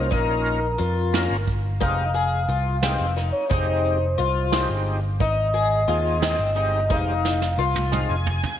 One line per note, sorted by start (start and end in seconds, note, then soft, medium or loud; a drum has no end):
0.00 0.12 C2 medium
0.00 0.10 A#3 medium
0.00 0.11 C#4 medium
0.00 0.12 F4 medium
0.00 0.12 A#4 medium
0.00 0.13 C5 medium
0.11 0.76 A#1 medium
0.11 0.59 A#3 medium
0.11 0.59 C#4 medium
0.11 0.65 D#4 medium
0.11 0.60 F4 medium
0.11 1.47 A#4 medium
0.11 0.60 A#4 medium
0.11 kick medium
0.11 closed hi-hat medium
0.46 closed hi-hat soft
0.78 1.26 F2 medium
0.78 1.33 F4 medium
0.78 closed hi-hat medium
1.13 1.37 A#3 medium
1.13 1.37 C#4 medium
1.13 1.37 F4 medium
1.13 1.37 A#4 medium
1.13 snare medium
1.13 closed hi-hat medium
1.31 1.82 G1 medium
1.47 kick medium
1.47 closed hi-hat soft
1.80 2.45 F1 medium
1.80 2.05 G#3 medium
1.80 2.05 C4 medium
1.80 2.08 D#4 medium
1.80 2.05 D#4 medium
1.80 2.06 G4 medium
1.80 2.79 F5 loud
1.80 kick medium
1.80 closed hi-hat medium
2.14 2.42 G#4 medium
2.14 closed hi-hat medium
2.49 2.96 C2 medium
2.49 2.76 F4 medium
2.49 closed hi-hat medium
2.81 3.07 G#3 medium
2.81 3.10 C4 medium
2.81 3.07 C4 medium
2.81 3.07 D#4 medium
2.81 3.07 G4 medium
2.81 3.29 F5 medium
2.81 snare medium
2.81 closed hi-hat medium
2.99 3.30 F1 medium
3.16 3.44 D#4 medium
3.16 snare soft
3.16 closed hi-hat medium
3.32 3.50 C#5 medium
3.49 4.15 F1 medium
3.49 3.98 G#3 medium
3.49 3.98 C4 medium
3.49 4.04 D#4 medium
3.49 3.99 D#4 medium
3.49 3.99 G4 medium
3.49 4.85 C5 medium
3.49 kick medium
3.49 closed hi-hat medium
3.85 closed hi-hat medium
4.18 4.66 C2 medium
4.18 4.72 F4 medium
4.18 closed hi-hat medium
4.52 5.00 G#3 medium
4.52 5.00 C4 medium
4.52 5.00 D#4 medium
4.52 5.01 G4 medium
4.52 snare medium
4.52 closed hi-hat medium
4.69 5.20 G1 medium
4.86 closed hi-hat medium
5.20 5.84 G#1 medium
5.20 5.47 D#4 medium
5.20 6.18 D#5 medium
5.20 kick medium
5.20 closed hi-hat medium
5.54 5.81 G#4 medium
5.54 closed hi-hat medium
5.88 6.35 D#2 medium
5.88 6.36 G#3 medium
5.88 6.36 C4 medium
5.88 6.36 D#4 medium
5.88 6.15 F4 medium
5.88 6.36 G#4 medium
5.88 closed hi-hat medium
6.22 6.49 C4 medium
6.22 6.54 D#5 loud
6.22 snare loud
6.22 closed hi-hat medium
6.39 6.90 G1 medium
6.55 6.80 G#3 medium
6.55 6.80 C4 soft
6.55 6.83 D#4 medium
6.55 6.80 D#4 medium
6.55 6.80 G4 medium
6.55 6.93 D#5 loud
6.55 closed hi-hat soft
6.89 7.54 F1 medium
6.89 7.13 G#3 medium
6.89 7.14 C4 medium
6.89 7.44 D#4 medium
6.89 7.14 D#4 medium
6.89 7.14 G4 medium
6.89 8.27 F5 loud
6.89 kick medium
6.89 closed hi-hat medium
7.25 snare medium
7.42 snare medium
7.58 8.05 C2 medium
7.58 8.13 F4 medium
7.76 high tom medium
7.92 8.16 G#3 medium
7.92 8.16 C4 medium
7.92 8.16 D#4 medium
7.92 8.16 F4 medium
7.92 8.08 F5 medium
7.92 mid tom medium
8.09 8.40 F1 medium
8.09 8.57 G#5 medium
8.26 floor tom medium
8.43 floor tom medium